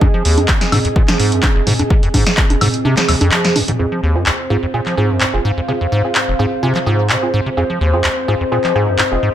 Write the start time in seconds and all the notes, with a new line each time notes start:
Already playing: C4 G#4 D#5 G#5
0.01 F2, kick, high conga
0.14 F3
0.25 D#2, open hi-hat
0.38 F#2, closed hi-hat, high conga
0.48 D#2, kick, clap
0.61 snare, closed hi-hat
0.72 G#2, open hi-hat, mid tom, high conga, high woodblock
0.85 F2, closed hi-hat
0.96 A#2, kick
1.08 F3, snare, clap, closed hi-hat, high conga
1.20 G#2, open hi-hat
1.32 F#2, closed hi-hat
1.43 kick, clap, high conga
1.56 F1
1.67 G#2, open hi-hat, mid tom
1.79 F2, closed hi-hat, high conga
1.90 C3, kick
2.03 F2, closed hi-hat
2.14 G#2, kick, open hi-hat, high conga
2.26 snare, closed hi-hat
2.37 kick, clap
2.50 F1, closed hi-hat, high conga
2.61 G#2, open hi-hat, mid tom, high woodblock
2.74 closed hi-hat
2.85 C3, high conga
2.97 F3, snare, clap, closed hi-hat
3.08 D#2, snare, open hi-hat, high woodblock
3.21 F2, closed hi-hat, high conga
3.31 F3, clap
3.45 snare, closed hi-hat
3.56 F2, open hi-hat, high conga
3.68 G#2, closed hi-hat, mid tom
3.79 F2 C4 F4 G#4 C5
3.92 F3
4.03 D#2
4.15 F#2 C4 F4 G#4
4.26 D#2, clap
4.40 F5
4.50 G#2 C4 F4 G#4
4.60 F2 G#5
4.74 A#2 C4 F4 G#4
4.86 F3, clap
4.97 G#2 C4 F4 G#4
5.10 F#2
5.20 G#2, clap
5.34 F1 C4 F4 G#4
5.45 G#2
5.57 F2
5.68 C3 C4 F4 G#4
5.81 F2
5.92 G#2
6.04 C4 F4 G#4
6.15 clap
6.28 F1
6.39 G#2 C4 F4 G#4
6.63 C3 C4 F4 G#4
6.75 F3, clap
6.86 G#2 C4 F4 G#4
7.09 C3, clap
7.23 C4 F4 G#4
7.34 G#2
7.46 C3
7.57 F2 C4 F4 G#4
7.70 F3
7.81 D#2
7.93 F#2 C4 F4 G#4 D#5
8.04 D#2, clap
8.28 G#2 C4 F4 G#4
8.41 F2
8.52 A#2 C4 F4 G#4
8.64 F3, clap
8.75 G#2 C4 F4 G#4
8.88 F#2
8.98 G#2, clap
9.12 F1 C4 F4 G#4
9.23 G#2